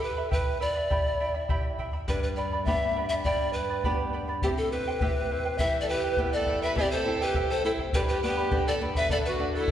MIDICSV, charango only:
0, 0, Header, 1, 2, 480
1, 0, Start_track
1, 0, Key_signature, 1, "minor"
1, 0, Tempo, 585366
1, 745, Time_signature, 2, 2, 24, 8
1, 7962, End_track
2, 0, Start_track
2, 0, Title_t, "Charango"
2, 0, Program_c, 0, 24
2, 10, Note_on_c, 0, 79, 61
2, 17, Note_on_c, 0, 64, 56
2, 20, Note_on_c, 0, 76, 62
2, 24, Note_on_c, 0, 83, 65
2, 126, Note_off_c, 0, 83, 0
2, 136, Note_off_c, 0, 64, 0
2, 136, Note_off_c, 0, 76, 0
2, 136, Note_on_c, 0, 83, 57
2, 137, Note_off_c, 0, 79, 0
2, 146, Note_on_c, 0, 64, 49
2, 146, Note_on_c, 0, 76, 52
2, 247, Note_off_c, 0, 64, 0
2, 250, Note_off_c, 0, 76, 0
2, 251, Note_off_c, 0, 83, 0
2, 253, Note_on_c, 0, 67, 72
2, 257, Note_on_c, 0, 64, 70
2, 257, Note_on_c, 0, 79, 65
2, 260, Note_on_c, 0, 76, 73
2, 261, Note_on_c, 0, 83, 71
2, 482, Note_off_c, 0, 79, 0
2, 486, Note_off_c, 0, 64, 0
2, 487, Note_off_c, 0, 76, 0
2, 492, Note_off_c, 0, 83, 0
2, 492, Note_on_c, 0, 79, 55
2, 495, Note_on_c, 0, 64, 63
2, 497, Note_on_c, 0, 76, 66
2, 499, Note_off_c, 0, 67, 0
2, 502, Note_on_c, 0, 83, 63
2, 614, Note_off_c, 0, 83, 0
2, 618, Note_off_c, 0, 79, 0
2, 620, Note_off_c, 0, 64, 0
2, 621, Note_off_c, 0, 76, 0
2, 623, Note_on_c, 0, 83, 53
2, 630, Note_on_c, 0, 76, 48
2, 634, Note_on_c, 0, 64, 43
2, 736, Note_off_c, 0, 64, 0
2, 736, Note_off_c, 0, 76, 0
2, 740, Note_off_c, 0, 83, 0
2, 740, Note_on_c, 0, 67, 68
2, 744, Note_on_c, 0, 79, 72
2, 745, Note_on_c, 0, 64, 71
2, 746, Note_on_c, 0, 76, 78
2, 750, Note_on_c, 0, 83, 78
2, 975, Note_off_c, 0, 79, 0
2, 979, Note_off_c, 0, 64, 0
2, 979, Note_off_c, 0, 76, 0
2, 983, Note_off_c, 0, 67, 0
2, 985, Note_on_c, 0, 79, 58
2, 988, Note_off_c, 0, 83, 0
2, 989, Note_on_c, 0, 64, 54
2, 989, Note_on_c, 0, 76, 64
2, 996, Note_on_c, 0, 83, 62
2, 1092, Note_off_c, 0, 83, 0
2, 1102, Note_off_c, 0, 76, 0
2, 1102, Note_on_c, 0, 83, 64
2, 1105, Note_off_c, 0, 79, 0
2, 1107, Note_off_c, 0, 64, 0
2, 1112, Note_on_c, 0, 76, 56
2, 1117, Note_on_c, 0, 64, 51
2, 1218, Note_off_c, 0, 64, 0
2, 1221, Note_off_c, 0, 76, 0
2, 1221, Note_off_c, 0, 83, 0
2, 1224, Note_on_c, 0, 67, 78
2, 1228, Note_on_c, 0, 64, 76
2, 1228, Note_on_c, 0, 79, 74
2, 1230, Note_on_c, 0, 83, 80
2, 1231, Note_on_c, 0, 76, 87
2, 1454, Note_off_c, 0, 79, 0
2, 1460, Note_off_c, 0, 64, 0
2, 1463, Note_off_c, 0, 76, 0
2, 1464, Note_on_c, 0, 79, 66
2, 1465, Note_off_c, 0, 67, 0
2, 1468, Note_off_c, 0, 83, 0
2, 1469, Note_on_c, 0, 64, 63
2, 1473, Note_on_c, 0, 76, 72
2, 1477, Note_on_c, 0, 83, 74
2, 1574, Note_off_c, 0, 83, 0
2, 1578, Note_off_c, 0, 76, 0
2, 1584, Note_on_c, 0, 83, 48
2, 1585, Note_off_c, 0, 79, 0
2, 1588, Note_off_c, 0, 64, 0
2, 1588, Note_on_c, 0, 76, 43
2, 1597, Note_on_c, 0, 64, 37
2, 1700, Note_off_c, 0, 83, 0
2, 1703, Note_on_c, 0, 67, 68
2, 1704, Note_off_c, 0, 64, 0
2, 1704, Note_off_c, 0, 76, 0
2, 1706, Note_on_c, 0, 79, 79
2, 1707, Note_on_c, 0, 74, 69
2, 1708, Note_on_c, 0, 71, 68
2, 1710, Note_on_c, 0, 83, 78
2, 1931, Note_off_c, 0, 79, 0
2, 1937, Note_off_c, 0, 71, 0
2, 1941, Note_off_c, 0, 74, 0
2, 1941, Note_on_c, 0, 79, 52
2, 1943, Note_off_c, 0, 83, 0
2, 1945, Note_off_c, 0, 67, 0
2, 1947, Note_on_c, 0, 71, 58
2, 1951, Note_on_c, 0, 74, 61
2, 1953, Note_on_c, 0, 83, 60
2, 2059, Note_off_c, 0, 83, 0
2, 2064, Note_off_c, 0, 79, 0
2, 2065, Note_off_c, 0, 74, 0
2, 2067, Note_off_c, 0, 71, 0
2, 2069, Note_on_c, 0, 83, 57
2, 2075, Note_on_c, 0, 74, 49
2, 2083, Note_on_c, 0, 71, 46
2, 2182, Note_off_c, 0, 71, 0
2, 2185, Note_off_c, 0, 74, 0
2, 2185, Note_off_c, 0, 83, 0
2, 2188, Note_on_c, 0, 67, 72
2, 2192, Note_on_c, 0, 71, 71
2, 2194, Note_on_c, 0, 79, 71
2, 2195, Note_on_c, 0, 74, 72
2, 2195, Note_on_c, 0, 83, 70
2, 2418, Note_off_c, 0, 79, 0
2, 2424, Note_off_c, 0, 71, 0
2, 2424, Note_off_c, 0, 74, 0
2, 2427, Note_off_c, 0, 67, 0
2, 2428, Note_on_c, 0, 79, 61
2, 2429, Note_off_c, 0, 83, 0
2, 2433, Note_on_c, 0, 71, 69
2, 2434, Note_on_c, 0, 74, 62
2, 2439, Note_on_c, 0, 83, 62
2, 2538, Note_off_c, 0, 83, 0
2, 2545, Note_off_c, 0, 74, 0
2, 2548, Note_off_c, 0, 79, 0
2, 2548, Note_on_c, 0, 83, 51
2, 2550, Note_off_c, 0, 71, 0
2, 2555, Note_on_c, 0, 74, 46
2, 2561, Note_on_c, 0, 71, 41
2, 2666, Note_off_c, 0, 71, 0
2, 2668, Note_off_c, 0, 74, 0
2, 2668, Note_off_c, 0, 83, 0
2, 2670, Note_on_c, 0, 67, 71
2, 2674, Note_on_c, 0, 79, 81
2, 2676, Note_on_c, 0, 71, 71
2, 2677, Note_on_c, 0, 83, 80
2, 2678, Note_on_c, 0, 74, 79
2, 2898, Note_off_c, 0, 79, 0
2, 2905, Note_off_c, 0, 71, 0
2, 2907, Note_off_c, 0, 74, 0
2, 2908, Note_off_c, 0, 67, 0
2, 2908, Note_on_c, 0, 79, 51
2, 2912, Note_off_c, 0, 83, 0
2, 2914, Note_on_c, 0, 71, 62
2, 2917, Note_on_c, 0, 74, 60
2, 2923, Note_on_c, 0, 83, 65
2, 3019, Note_off_c, 0, 83, 0
2, 3025, Note_off_c, 0, 74, 0
2, 3028, Note_off_c, 0, 79, 0
2, 3029, Note_on_c, 0, 83, 52
2, 3031, Note_off_c, 0, 71, 0
2, 3035, Note_on_c, 0, 74, 56
2, 3039, Note_on_c, 0, 71, 43
2, 3142, Note_off_c, 0, 71, 0
2, 3143, Note_off_c, 0, 74, 0
2, 3146, Note_off_c, 0, 83, 0
2, 3150, Note_on_c, 0, 67, 66
2, 3151, Note_on_c, 0, 79, 70
2, 3152, Note_on_c, 0, 71, 71
2, 3153, Note_on_c, 0, 74, 76
2, 3156, Note_on_c, 0, 83, 75
2, 3378, Note_off_c, 0, 79, 0
2, 3384, Note_off_c, 0, 71, 0
2, 3386, Note_off_c, 0, 74, 0
2, 3388, Note_off_c, 0, 67, 0
2, 3388, Note_on_c, 0, 79, 62
2, 3389, Note_off_c, 0, 83, 0
2, 3394, Note_on_c, 0, 71, 61
2, 3396, Note_on_c, 0, 74, 60
2, 3398, Note_on_c, 0, 83, 71
2, 3501, Note_off_c, 0, 83, 0
2, 3507, Note_off_c, 0, 74, 0
2, 3507, Note_off_c, 0, 79, 0
2, 3511, Note_off_c, 0, 71, 0
2, 3511, Note_on_c, 0, 83, 51
2, 3517, Note_on_c, 0, 74, 44
2, 3523, Note_on_c, 0, 71, 42
2, 3629, Note_off_c, 0, 83, 0
2, 3632, Note_off_c, 0, 71, 0
2, 3632, Note_off_c, 0, 74, 0
2, 3634, Note_on_c, 0, 67, 69
2, 3636, Note_on_c, 0, 64, 71
2, 3637, Note_on_c, 0, 76, 72
2, 3639, Note_on_c, 0, 72, 81
2, 3640, Note_on_c, 0, 79, 86
2, 3866, Note_off_c, 0, 76, 0
2, 3868, Note_off_c, 0, 64, 0
2, 3871, Note_off_c, 0, 67, 0
2, 3873, Note_off_c, 0, 72, 0
2, 3874, Note_off_c, 0, 79, 0
2, 3876, Note_on_c, 0, 76, 58
2, 3878, Note_on_c, 0, 64, 63
2, 3883, Note_on_c, 0, 72, 62
2, 3889, Note_on_c, 0, 79, 64
2, 3988, Note_off_c, 0, 79, 0
2, 3992, Note_off_c, 0, 76, 0
2, 3993, Note_off_c, 0, 64, 0
2, 3993, Note_off_c, 0, 72, 0
2, 3998, Note_on_c, 0, 79, 59
2, 4003, Note_on_c, 0, 72, 53
2, 4006, Note_on_c, 0, 64, 46
2, 4109, Note_off_c, 0, 64, 0
2, 4111, Note_off_c, 0, 72, 0
2, 4112, Note_off_c, 0, 79, 0
2, 4115, Note_on_c, 0, 76, 66
2, 4116, Note_on_c, 0, 67, 73
2, 4119, Note_on_c, 0, 64, 69
2, 4121, Note_on_c, 0, 72, 77
2, 4123, Note_on_c, 0, 79, 74
2, 4342, Note_off_c, 0, 76, 0
2, 4347, Note_off_c, 0, 64, 0
2, 4349, Note_off_c, 0, 72, 0
2, 4352, Note_off_c, 0, 67, 0
2, 4352, Note_on_c, 0, 76, 66
2, 4353, Note_off_c, 0, 79, 0
2, 4357, Note_on_c, 0, 64, 56
2, 4359, Note_on_c, 0, 72, 66
2, 4362, Note_on_c, 0, 79, 64
2, 4459, Note_off_c, 0, 79, 0
2, 4467, Note_off_c, 0, 72, 0
2, 4469, Note_on_c, 0, 79, 50
2, 4470, Note_off_c, 0, 76, 0
2, 4472, Note_off_c, 0, 64, 0
2, 4476, Note_on_c, 0, 72, 48
2, 4482, Note_on_c, 0, 64, 40
2, 4583, Note_off_c, 0, 64, 0
2, 4588, Note_off_c, 0, 79, 0
2, 4591, Note_on_c, 0, 67, 75
2, 4592, Note_off_c, 0, 72, 0
2, 4593, Note_on_c, 0, 64, 80
2, 4594, Note_on_c, 0, 76, 72
2, 4596, Note_on_c, 0, 71, 80
2, 4597, Note_on_c, 0, 79, 79
2, 4817, Note_off_c, 0, 76, 0
2, 4822, Note_off_c, 0, 64, 0
2, 4827, Note_on_c, 0, 76, 57
2, 4828, Note_off_c, 0, 71, 0
2, 4828, Note_off_c, 0, 79, 0
2, 4829, Note_off_c, 0, 67, 0
2, 4832, Note_on_c, 0, 64, 62
2, 4838, Note_on_c, 0, 71, 58
2, 4838, Note_on_c, 0, 79, 57
2, 4944, Note_off_c, 0, 79, 0
2, 4947, Note_off_c, 0, 76, 0
2, 4949, Note_off_c, 0, 71, 0
2, 4950, Note_off_c, 0, 64, 0
2, 4954, Note_on_c, 0, 79, 57
2, 4959, Note_on_c, 0, 71, 53
2, 4963, Note_on_c, 0, 64, 45
2, 5067, Note_off_c, 0, 64, 0
2, 5067, Note_off_c, 0, 71, 0
2, 5070, Note_off_c, 0, 79, 0
2, 5072, Note_on_c, 0, 67, 67
2, 5075, Note_on_c, 0, 76, 63
2, 5077, Note_on_c, 0, 64, 73
2, 5077, Note_on_c, 0, 71, 74
2, 5079, Note_on_c, 0, 79, 70
2, 5299, Note_off_c, 0, 76, 0
2, 5302, Note_off_c, 0, 64, 0
2, 5306, Note_off_c, 0, 71, 0
2, 5309, Note_off_c, 0, 67, 0
2, 5309, Note_on_c, 0, 76, 63
2, 5310, Note_off_c, 0, 79, 0
2, 5311, Note_on_c, 0, 64, 66
2, 5316, Note_on_c, 0, 71, 68
2, 5320, Note_on_c, 0, 79, 75
2, 5426, Note_off_c, 0, 79, 0
2, 5428, Note_off_c, 0, 76, 0
2, 5429, Note_off_c, 0, 64, 0
2, 5432, Note_off_c, 0, 71, 0
2, 5436, Note_on_c, 0, 79, 54
2, 5443, Note_on_c, 0, 71, 51
2, 5445, Note_on_c, 0, 64, 46
2, 5543, Note_off_c, 0, 64, 0
2, 5546, Note_off_c, 0, 79, 0
2, 5547, Note_on_c, 0, 67, 71
2, 5552, Note_on_c, 0, 76, 78
2, 5553, Note_off_c, 0, 71, 0
2, 5553, Note_on_c, 0, 64, 75
2, 5555, Note_on_c, 0, 79, 87
2, 5557, Note_on_c, 0, 72, 81
2, 5779, Note_off_c, 0, 76, 0
2, 5786, Note_off_c, 0, 64, 0
2, 5787, Note_off_c, 0, 67, 0
2, 5789, Note_on_c, 0, 76, 64
2, 5791, Note_off_c, 0, 72, 0
2, 5791, Note_off_c, 0, 79, 0
2, 5796, Note_on_c, 0, 64, 66
2, 5802, Note_on_c, 0, 72, 70
2, 5803, Note_on_c, 0, 79, 67
2, 5900, Note_off_c, 0, 79, 0
2, 5904, Note_off_c, 0, 72, 0
2, 5908, Note_off_c, 0, 76, 0
2, 5909, Note_on_c, 0, 79, 60
2, 5911, Note_off_c, 0, 64, 0
2, 5914, Note_on_c, 0, 72, 56
2, 5919, Note_on_c, 0, 64, 46
2, 6028, Note_off_c, 0, 79, 0
2, 6029, Note_off_c, 0, 64, 0
2, 6030, Note_off_c, 0, 72, 0
2, 6031, Note_on_c, 0, 67, 73
2, 6032, Note_on_c, 0, 76, 71
2, 6039, Note_on_c, 0, 64, 69
2, 6039, Note_on_c, 0, 72, 77
2, 6040, Note_on_c, 0, 79, 81
2, 6260, Note_off_c, 0, 76, 0
2, 6267, Note_off_c, 0, 64, 0
2, 6267, Note_off_c, 0, 72, 0
2, 6268, Note_off_c, 0, 67, 0
2, 6270, Note_on_c, 0, 76, 67
2, 6273, Note_off_c, 0, 79, 0
2, 6276, Note_on_c, 0, 72, 68
2, 6277, Note_on_c, 0, 64, 62
2, 6282, Note_on_c, 0, 79, 69
2, 6381, Note_off_c, 0, 79, 0
2, 6388, Note_off_c, 0, 76, 0
2, 6391, Note_off_c, 0, 64, 0
2, 6391, Note_off_c, 0, 72, 0
2, 6391, Note_on_c, 0, 79, 57
2, 6400, Note_on_c, 0, 72, 49
2, 6403, Note_on_c, 0, 64, 44
2, 6508, Note_off_c, 0, 79, 0
2, 6513, Note_off_c, 0, 72, 0
2, 6513, Note_on_c, 0, 67, 73
2, 6514, Note_off_c, 0, 64, 0
2, 6517, Note_on_c, 0, 79, 75
2, 6520, Note_on_c, 0, 71, 73
2, 6520, Note_on_c, 0, 74, 80
2, 6523, Note_on_c, 0, 83, 90
2, 6734, Note_off_c, 0, 79, 0
2, 6738, Note_off_c, 0, 71, 0
2, 6744, Note_on_c, 0, 79, 60
2, 6745, Note_off_c, 0, 74, 0
2, 6745, Note_off_c, 0, 83, 0
2, 6747, Note_on_c, 0, 71, 64
2, 6749, Note_off_c, 0, 67, 0
2, 6755, Note_on_c, 0, 74, 60
2, 6755, Note_on_c, 0, 83, 68
2, 6852, Note_off_c, 0, 83, 0
2, 6859, Note_off_c, 0, 74, 0
2, 6862, Note_on_c, 0, 83, 61
2, 6865, Note_off_c, 0, 79, 0
2, 6866, Note_off_c, 0, 71, 0
2, 6868, Note_on_c, 0, 74, 54
2, 6876, Note_on_c, 0, 71, 52
2, 6978, Note_off_c, 0, 71, 0
2, 6978, Note_off_c, 0, 74, 0
2, 6983, Note_off_c, 0, 83, 0
2, 6983, Note_on_c, 0, 67, 76
2, 6986, Note_on_c, 0, 79, 71
2, 6987, Note_on_c, 0, 74, 84
2, 6988, Note_on_c, 0, 71, 78
2, 6992, Note_on_c, 0, 83, 83
2, 7211, Note_off_c, 0, 79, 0
2, 7214, Note_off_c, 0, 71, 0
2, 7218, Note_off_c, 0, 74, 0
2, 7221, Note_on_c, 0, 79, 61
2, 7224, Note_off_c, 0, 67, 0
2, 7224, Note_off_c, 0, 83, 0
2, 7224, Note_on_c, 0, 71, 66
2, 7228, Note_on_c, 0, 74, 71
2, 7233, Note_on_c, 0, 83, 71
2, 7325, Note_off_c, 0, 83, 0
2, 7334, Note_off_c, 0, 74, 0
2, 7335, Note_on_c, 0, 83, 52
2, 7341, Note_off_c, 0, 71, 0
2, 7343, Note_off_c, 0, 79, 0
2, 7344, Note_on_c, 0, 74, 54
2, 7351, Note_on_c, 0, 71, 42
2, 7449, Note_off_c, 0, 74, 0
2, 7454, Note_on_c, 0, 69, 80
2, 7459, Note_on_c, 0, 74, 80
2, 7460, Note_off_c, 0, 83, 0
2, 7464, Note_on_c, 0, 78, 83
2, 7468, Note_off_c, 0, 71, 0
2, 7690, Note_off_c, 0, 69, 0
2, 7695, Note_off_c, 0, 74, 0
2, 7700, Note_off_c, 0, 78, 0
2, 7700, Note_on_c, 0, 69, 60
2, 7705, Note_on_c, 0, 74, 69
2, 7710, Note_on_c, 0, 78, 64
2, 7806, Note_off_c, 0, 78, 0
2, 7816, Note_on_c, 0, 78, 61
2, 7818, Note_off_c, 0, 74, 0
2, 7822, Note_off_c, 0, 69, 0
2, 7828, Note_on_c, 0, 74, 49
2, 7931, Note_off_c, 0, 74, 0
2, 7937, Note_off_c, 0, 78, 0
2, 7962, End_track
0, 0, End_of_file